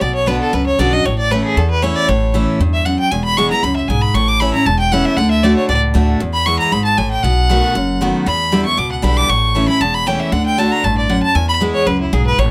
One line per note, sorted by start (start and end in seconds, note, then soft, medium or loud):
0.01 0.37 B1 loud
0.01 0.51 B2 medium
0.01 0.14 D5 medium
0.15 0.29 C#5 medium
0.26 0.51 D3 medium
0.26 0.52 B3 medium
0.26 0.52 D4 medium
0.26 0.52 F#4 medium
0.26 0.41 B4 medium
0.41 0.55 A4 medium
0.53 0.75 C#2 medium
0.53 1.02 F#2 medium
0.53 0.66 B4 medium
0.67 0.81 C#5 medium
0.79 1.01 B1 medium
0.79 0.92 D3 medium
0.79 0.92 B3 loud
0.79 0.92 D4 medium
0.79 0.91 F#4 medium
0.79 0.95 D5 medium
0.92 1.05 D4 soft
0.92 1.04 F#4 medium
0.92 1.07 D#5 loud
1.05 1.41 A1 medium
1.05 1.54 A2 medium
1.05 1.18 C#5 medium
1.19 1.32 D5 loud
1.31 1.55 E3 medium
1.31 1.56 A3 medium
1.31 1.56 C#4 medium
1.31 1.56 E4 medium
1.31 1.44 B4 medium
1.44 1.59 G#4 medium
1.56 1.92 E2 medium
1.56 2.06 E2 medium
1.56 1.70 A4 medium
1.71 1.84 B4 medium
1.82 2.07 E3 medium
1.82 2.07 A3 medium
1.82 2.08 C#4 loud
1.82 2.08 E4 medium
1.82 1.97 C#5 medium
1.96 2.10 D5 loud
2.08 2.44 A1 medium
2.08 2.58 A2 medium
2.08 2.34 C#5 medium
2.34 2.59 E3 medium
2.34 2.59 A3 medium
2.34 2.59 C#4 medium
2.34 2.59 E4 medium
2.60 2.96 E2 medium
2.60 2.85 G2 medium
2.73 2.87 E5 loud
2.86 3.10 F#2 medium
2.86 2.99 F#5 medium
2.99 3.13 G5 loud
3.11 3.48 E1 medium
3.11 3.61 E2 medium
3.11 3.24 G#5 medium
3.25 3.39 B5 loud
3.37 3.50 E3 medium
3.37 3.50 G#3 loud
3.37 3.51 B3 loud
3.37 3.50 E4 medium
3.37 3.50 C#6 loud
3.51 3.63 B3 soft
3.51 3.63 E4 medium
3.51 3.64 A#5 loud
3.63 3.85 C#2 medium
3.63 3.88 F#2 medium
3.63 3.76 B5 medium
3.76 3.90 E5 medium
3.88 4.11 B1 medium
3.88 4.14 G#2 medium
3.88 4.03 G#5 medium
4.02 4.16 B5 medium
4.14 4.50 A1 medium
4.14 4.64 A2 medium
4.14 4.29 C#6 medium
4.28 4.42 D6 loud
4.40 4.53 E3 medium
4.40 4.54 A3 medium
4.40 4.54 C#4 medium
4.40 4.52 E4 medium
4.40 4.53 B5 medium
4.54 4.66 C#4 soft
4.54 4.66 E4 medium
4.54 4.68 A#5 medium
4.66 5.02 E1 loud
4.66 5.15 E2 medium
4.66 4.79 A5 loud
4.79 4.93 G5 loud
4.92 5.16 E3 medium
4.92 5.17 A3 medium
4.92 5.17 C#4 loud
4.92 5.17 E4 loud
4.92 5.07 F#5 medium
5.05 5.18 E5 loud
5.17 5.53 D2 loud
5.17 5.42 D3 medium
5.17 5.30 F#5 loud
5.31 5.45 E5 medium
5.43 5.68 D3 medium
5.43 5.68 A3 medium
5.43 5.69 D4 medium
5.43 5.69 F#4 medium
5.43 5.56 D5 medium
5.57 5.68 C#5 medium
5.69 5.91 C#2 medium
5.69 6.18 A2 medium
5.69 5.77 D5 loud
5.94 6.17 D2 medium
5.94 6.19 D3 medium
5.94 6.19 A3 loud
5.94 6.20 D4 medium
5.94 6.20 F#4 loud
6.20 6.70 E2 medium
6.20 6.57 E2 loud
6.34 6.47 B5 medium
6.46 6.71 E3 medium
6.46 6.71 G#3 medium
6.46 6.71 B3 medium
6.46 6.72 E4 medium
6.46 6.58 C#6 loud
6.59 6.74 A#5 loud
6.72 6.94 G#1 medium
6.72 6.97 G#2 medium
6.72 6.84 B5 loud
6.85 6.99 A5 loud
6.97 7.20 A1 medium
6.97 7.23 A2 medium
6.97 7.10 G#5 medium
7.11 7.25 G5 loud
7.23 7.59 B1 loud
7.23 7.73 B2 medium
7.23 8.01 F#5 loud
7.49 7.74 D#3 medium
7.49 7.74 A3 medium
7.49 7.75 B3 medium
7.49 7.75 F#4 loud
7.75 8.11 F#1 medium
7.75 8.24 F#2 medium
8.01 8.25 D#3 medium
8.01 8.26 A3 medium
8.01 8.26 B3 loud
8.01 8.26 F#4 loud
8.26 8.75 E2 medium
8.26 8.62 E2 loud
8.26 8.63 B5 loud
8.52 8.65 D3 medium
8.52 8.65 G3 loud
8.52 8.65 B3 loud
8.52 8.64 E4 loud
8.65 8.78 B3 soft
8.65 8.77 E4 medium
8.65 8.80 C#6 loud
8.77 9.00 C#2 medium
8.77 9.27 B2 medium
8.77 8.91 D6 loud
8.92 9.05 F#5 medium
9.02 9.25 B1 medium
9.02 9.28 D3 medium
9.02 9.28 G3 loud
9.02 9.28 B3 loud
9.02 9.28 E4 loud
9.02 9.19 B5 medium
9.17 9.31 D6 loud
9.29 9.65 A1 medium
9.29 9.78 A2 medium
9.29 9.68 C#6 loud
9.55 9.68 E3 medium
9.55 9.68 A3 medium
9.55 9.68 C#4 medium
9.55 9.67 E4 medium
9.68 9.81 C#4 medium
9.68 9.80 E4 medium
9.68 9.82 B5 loud
9.81 10.17 E1 medium
9.81 10.30 E2 medium
9.81 9.96 A5 loud
9.94 10.09 B5 loud
10.06 10.31 E3 medium
10.06 10.31 A3 medium
10.06 10.31 C#4 medium
10.06 10.32 E4 medium
10.06 10.22 G5 medium
10.20 10.34 E5 medium
10.32 10.68 D2 medium
10.32 10.57 D3 medium
10.32 10.46 F#5 medium
10.46 10.60 G5 loud
10.58 10.83 D3 medium
10.58 10.83 A3 medium
10.58 10.83 D4 medium
10.58 10.83 F#4 medium
10.58 10.73 A5 medium
10.72 10.86 A#5 loud
10.84 11.20 A1 medium
10.84 11.08 G2 medium
10.84 10.97 A5 medium
10.98 11.12 D5 medium
11.10 11.34 F#2 medium
11.10 11.22 F#5 medium
11.23 11.37 A5 loud
11.35 11.71 E2 loud
11.35 11.84 E2 medium
11.35 11.48 G#5 loud
11.49 11.56 B5 loud
11.60 11.85 E3 medium
11.60 11.86 G#3 medium
11.60 11.86 B3 medium
11.60 11.86 E4 medium
11.74 11.88 C#5 loud
11.87 12.09 C#2 medium
11.87 12.11 F#2 medium
11.87 12.00 B4 medium
12.01 12.15 E4 medium
12.13 12.35 B1 loud
12.13 12.37 G#2 loud
12.13 12.26 G#4 medium
12.26 12.40 B4 loud
12.38 12.51 A1 loud
12.38 12.51 A2 medium
12.38 12.51 C#5 medium